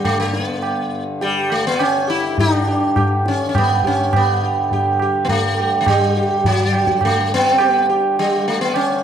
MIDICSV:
0, 0, Header, 1, 4, 480
1, 0, Start_track
1, 0, Tempo, 583658
1, 526, Time_signature, 3, 2, 24, 8
1, 3403, Tempo, 575816
1, 7484, End_track
2, 0, Start_track
2, 0, Title_t, "Sitar"
2, 0, Program_c, 0, 104
2, 41, Note_on_c, 0, 57, 75
2, 159, Note_off_c, 0, 57, 0
2, 163, Note_on_c, 0, 57, 72
2, 368, Note_off_c, 0, 57, 0
2, 368, Note_on_c, 0, 59, 72
2, 853, Note_off_c, 0, 59, 0
2, 997, Note_on_c, 0, 67, 36
2, 1005, Note_on_c, 0, 55, 82
2, 1225, Note_off_c, 0, 67, 0
2, 1248, Note_on_c, 0, 57, 73
2, 1254, Note_off_c, 0, 55, 0
2, 1369, Note_off_c, 0, 57, 0
2, 1372, Note_on_c, 0, 59, 84
2, 1481, Note_on_c, 0, 61, 85
2, 1493, Note_off_c, 0, 59, 0
2, 1705, Note_on_c, 0, 67, 35
2, 1725, Note_on_c, 0, 64, 87
2, 1732, Note_off_c, 0, 61, 0
2, 1939, Note_off_c, 0, 67, 0
2, 1949, Note_off_c, 0, 64, 0
2, 1968, Note_on_c, 0, 67, 40
2, 1977, Note_on_c, 0, 62, 96
2, 2187, Note_off_c, 0, 67, 0
2, 2196, Note_on_c, 0, 67, 37
2, 2424, Note_off_c, 0, 67, 0
2, 2442, Note_on_c, 0, 67, 35
2, 2666, Note_off_c, 0, 67, 0
2, 2695, Note_off_c, 0, 62, 0
2, 2698, Note_on_c, 0, 61, 74
2, 2860, Note_off_c, 0, 61, 0
2, 2870, Note_on_c, 0, 61, 60
2, 2924, Note_off_c, 0, 61, 0
2, 2926, Note_on_c, 0, 67, 34
2, 2942, Note_on_c, 0, 59, 80
2, 3148, Note_off_c, 0, 67, 0
2, 3161, Note_on_c, 0, 67, 35
2, 3180, Note_off_c, 0, 59, 0
2, 3183, Note_on_c, 0, 61, 73
2, 3384, Note_off_c, 0, 67, 0
2, 3419, Note_off_c, 0, 61, 0
2, 3424, Note_on_c, 0, 59, 75
2, 3651, Note_on_c, 0, 67, 34
2, 3873, Note_off_c, 0, 67, 0
2, 3896, Note_on_c, 0, 67, 35
2, 4105, Note_off_c, 0, 59, 0
2, 4116, Note_off_c, 0, 67, 0
2, 4139, Note_on_c, 0, 67, 32
2, 4327, Note_on_c, 0, 59, 55
2, 4358, Note_off_c, 0, 67, 0
2, 4363, Note_off_c, 0, 59, 0
2, 4366, Note_on_c, 0, 57, 78
2, 4615, Note_on_c, 0, 67, 31
2, 4785, Note_off_c, 0, 57, 0
2, 4795, Note_on_c, 0, 57, 59
2, 4836, Note_off_c, 0, 67, 0
2, 4849, Note_off_c, 0, 57, 0
2, 4853, Note_on_c, 0, 55, 79
2, 5097, Note_on_c, 0, 67, 33
2, 5318, Note_off_c, 0, 67, 0
2, 5335, Note_off_c, 0, 55, 0
2, 5339, Note_on_c, 0, 54, 76
2, 5576, Note_on_c, 0, 67, 31
2, 5796, Note_off_c, 0, 67, 0
2, 5827, Note_off_c, 0, 54, 0
2, 5830, Note_on_c, 0, 57, 76
2, 6067, Note_off_c, 0, 57, 0
2, 6072, Note_on_c, 0, 59, 93
2, 6289, Note_on_c, 0, 67, 36
2, 6507, Note_off_c, 0, 59, 0
2, 6512, Note_off_c, 0, 67, 0
2, 6534, Note_on_c, 0, 67, 35
2, 6754, Note_off_c, 0, 67, 0
2, 6782, Note_on_c, 0, 55, 84
2, 7017, Note_off_c, 0, 55, 0
2, 7020, Note_on_c, 0, 57, 68
2, 7128, Note_off_c, 0, 57, 0
2, 7131, Note_on_c, 0, 59, 74
2, 7252, Note_off_c, 0, 59, 0
2, 7252, Note_on_c, 0, 61, 89
2, 7477, Note_off_c, 0, 61, 0
2, 7484, End_track
3, 0, Start_track
3, 0, Title_t, "Harmonium"
3, 0, Program_c, 1, 20
3, 0, Note_on_c, 1, 43, 58
3, 0, Note_on_c, 1, 50, 59
3, 3401, Note_off_c, 1, 43, 0
3, 3402, Note_off_c, 1, 50, 0
3, 3414, Note_on_c, 1, 43, 57
3, 3414, Note_on_c, 1, 50, 54
3, 7484, Note_off_c, 1, 43, 0
3, 7484, Note_off_c, 1, 50, 0
3, 7484, End_track
4, 0, Start_track
4, 0, Title_t, "Tabla"
4, 37, Note_on_c, 9, 60, 72
4, 37, Note_on_c, 9, 64, 68
4, 119, Note_off_c, 9, 60, 0
4, 119, Note_off_c, 9, 64, 0
4, 274, Note_on_c, 9, 62, 57
4, 357, Note_off_c, 9, 62, 0
4, 514, Note_on_c, 9, 60, 69
4, 596, Note_off_c, 9, 60, 0
4, 998, Note_on_c, 9, 63, 70
4, 1080, Note_off_c, 9, 63, 0
4, 1235, Note_on_c, 9, 60, 63
4, 1317, Note_off_c, 9, 60, 0
4, 1475, Note_on_c, 9, 60, 78
4, 1558, Note_off_c, 9, 60, 0
4, 1955, Note_on_c, 9, 63, 75
4, 1955, Note_on_c, 9, 64, 62
4, 2037, Note_off_c, 9, 63, 0
4, 2037, Note_off_c, 9, 64, 0
4, 2435, Note_on_c, 9, 60, 75
4, 2435, Note_on_c, 9, 64, 62
4, 2517, Note_off_c, 9, 60, 0
4, 2517, Note_off_c, 9, 64, 0
4, 2678, Note_on_c, 9, 62, 62
4, 2760, Note_off_c, 9, 62, 0
4, 2918, Note_on_c, 9, 60, 76
4, 2918, Note_on_c, 9, 64, 66
4, 3000, Note_off_c, 9, 60, 0
4, 3000, Note_off_c, 9, 64, 0
4, 3150, Note_on_c, 9, 64, 51
4, 3232, Note_off_c, 9, 64, 0
4, 3396, Note_on_c, 9, 60, 93
4, 3396, Note_on_c, 9, 64, 85
4, 3479, Note_off_c, 9, 60, 0
4, 3479, Note_off_c, 9, 64, 0
4, 3880, Note_on_c, 9, 63, 67
4, 3880, Note_on_c, 9, 64, 64
4, 3964, Note_off_c, 9, 63, 0
4, 3964, Note_off_c, 9, 64, 0
4, 4118, Note_on_c, 9, 60, 63
4, 4201, Note_off_c, 9, 60, 0
4, 4357, Note_on_c, 9, 63, 69
4, 4357, Note_on_c, 9, 64, 63
4, 4440, Note_off_c, 9, 63, 0
4, 4440, Note_off_c, 9, 64, 0
4, 4600, Note_on_c, 9, 60, 52
4, 4683, Note_off_c, 9, 60, 0
4, 4842, Note_on_c, 9, 60, 68
4, 4842, Note_on_c, 9, 64, 60
4, 4925, Note_off_c, 9, 60, 0
4, 4925, Note_off_c, 9, 64, 0
4, 5325, Note_on_c, 9, 63, 64
4, 5325, Note_on_c, 9, 64, 66
4, 5409, Note_off_c, 9, 63, 0
4, 5409, Note_off_c, 9, 64, 0
4, 5563, Note_on_c, 9, 60, 53
4, 5646, Note_off_c, 9, 60, 0
4, 5682, Note_on_c, 9, 37, 57
4, 5765, Note_off_c, 9, 37, 0
4, 5797, Note_on_c, 9, 60, 73
4, 5797, Note_on_c, 9, 64, 64
4, 5880, Note_off_c, 9, 60, 0
4, 5880, Note_off_c, 9, 64, 0
4, 6276, Note_on_c, 9, 60, 73
4, 6359, Note_off_c, 9, 60, 0
4, 6758, Note_on_c, 9, 63, 66
4, 6842, Note_off_c, 9, 63, 0
4, 7240, Note_on_c, 9, 60, 70
4, 7323, Note_off_c, 9, 60, 0
4, 7484, End_track
0, 0, End_of_file